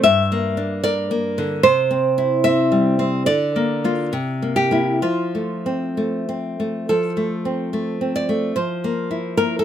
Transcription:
0.03 1.60 G2 medium
0.03 0.80 E5 loud
0.32 1.10 A#3 medium
0.57 1.64 D4 medium
0.84 1.64 A#4 medium
0.84 1.60 D5 loud
1.11 1.64 A#3 medium
1.38 1.64 D3 medium
1.63 3.25 C3 medium
1.63 2.42 C5 loud
1.91 2.44 C4 medium
2.18 3.29 E4 medium
2.44 2.98 C4 medium
2.44 3.25 E5 loud
2.72 3.28 G3 medium
2.99 3.26 C4 medium
3.26 4.11 D3 medium
3.26 4.53 D5 loud
3.56 3.83 A#3 medium
3.84 4.11 A#3 medium
3.84 4.11 F4 medium
4.13 5.01 C3 medium
4.42 4.70 A#3 soft
4.56 5.01 G4 medium
4.71 5.00 A#3 soft
4.71 5.01 E4 soft
5.02 6.86 F3 soft
5.02 5.94 F4 medium
5.35 5.96 A3 soft
5.66 6.27 C4 soft
5.97 6.58 A3 soft
6.29 6.90 C4 soft
6.60 6.90 A3 soft
6.89 8.52 F3 soft
6.89 8.10 A4 medium
7.17 7.72 A3 soft
7.45 8.00 C4 soft
7.73 8.28 A3 soft
8.01 8.56 C4 soft
8.16 8.55 D5 medium
8.29 8.56 A3 soft
8.56 9.64 F3 soft
8.56 9.35 C5 medium
8.84 9.37 A#3 soft
9.11 9.63 E4 soft
9.37 9.64 A#3 soft
9.37 9.59 A#4 medium
9.59 9.64 A4 medium

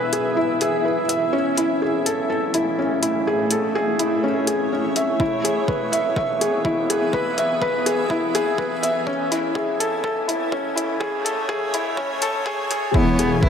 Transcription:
0.00 1.31 E1 medium
0.00 2.14 B3 medium
0.00 0.37 E4 medium
0.00 5.21 E4 medium
0.00 0.13 G#4 medium
0.00 0.85 B4 medium
0.00 1.09 E5 medium
0.00 2.23 E5 medium
0.00 5.21 G#5 medium
0.13 0.36 G#4 medium
0.13 closed hi-hat medium
0.37 0.60 E4 medium
0.61 0.84 G#4 medium
0.61 closed hi-hat medium
0.85 0.99 B4 medium
1.09 1.32 E5 medium
1.09 closed hi-hat medium
1.33 5.18 E1 medium
1.33 5.21 A3 medium
1.33 1.56 C#4 medium
1.57 1.81 E4 medium
1.57 closed hi-hat medium
1.82 2.05 G#4 medium
2.06 2.28 A4 medium
2.06 closed hi-hat medium
2.30 2.53 A4 medium
2.54 2.78 E4 medium
2.54 closed hi-hat medium
2.79 3.02 C#4 medium
3.03 3.26 E4 medium
3.03 closed hi-hat medium
3.08 5.88 C#5 medium
3.27 3.50 G#4 medium
3.51 3.75 A4 medium
3.51 closed hi-hat medium
3.75 3.99 G#4 medium
3.99 4.23 E4 medium
3.99 closed hi-hat medium
4.24 4.47 C#4 medium
4.47 4.71 G#4 medium
4.47 closed hi-hat medium
4.73 4.96 C#4 medium
4.96 5.20 E5 medium
4.96 closed hi-hat medium
5.20 9.05 E1 medium
5.20 10.03 B3 medium
5.20 5.44 E4 medium
5.20 kick loud
5.29 13.49 E3 medium
5.44 5.68 G#4 medium
5.44 closed hi-hat medium
5.68 5.92 B4 medium
5.68 kick loud
5.83 10.20 E5 medium
5.92 6.16 E5 medium
5.92 closed hi-hat medium
6.16 6.40 E5 medium
6.16 kick medium
6.41 6.65 G#4 medium
6.41 closed hi-hat medium
6.48 13.49 G#5 medium
6.65 6.89 E4 medium
6.65 kick loud
6.90 7.13 G#4 medium
6.90 closed hi-hat medium
7.13 7.37 B4 medium
7.13 kick medium
7.38 7.61 E5 medium
7.38 closed hi-hat medium
7.62 7.85 B4 medium
7.62 kick loud
7.86 8.10 G#4 medium
7.86 closed hi-hat medium
8.10 8.34 E4 medium
8.10 kick medium
8.35 8.58 G#4 medium
8.35 closed hi-hat medium
8.58 8.73 B4 medium
8.58 kick medium
8.83 9.06 E5 medium
8.83 closed hi-hat medium
9.07 12.92 E1 medium
9.07 12.95 A3 medium
9.07 9.30 C#4 medium
9.07 kick medium
9.31 9.55 E4 medium
9.31 closed hi-hat medium
9.55 9.79 G#4 medium
9.55 kick loud
9.80 10.03 A4 medium
9.80 closed hi-hat medium
10.04 10.27 A4 medium
10.04 kick loud
10.12 13.49 C#5 medium
10.28 10.51 E4 medium
10.28 closed hi-hat medium
10.52 10.76 C#4 medium
10.52 kick loud
10.76 11.00 E4 medium
10.76 closed hi-hat medium
11.00 11.24 G#4 medium
11.00 kick medium
11.25 11.48 A4 medium
11.25 closed hi-hat medium
11.49 11.72 G#4 loud
11.49 kick medium
11.74 11.97 E4 medium
11.74 closed hi-hat medium
11.97 12.21 C#4 medium
11.97 kick loud
12.22 12.45 A4 loud
12.22 closed hi-hat medium
12.46 12.70 G#4 loud
12.46 kick loud
12.71 12.94 G#4 loud
12.71 closed hi-hat medium
12.94 13.49 E1 loud
12.94 13.40 B3 loud
12.94 13.18 E4 medium
12.94 kick loud
13.19 13.42 G#4 medium
13.19 closed hi-hat medium
13.43 13.49 E4 loud
13.43 13.49 B4 medium
13.43 kick loud

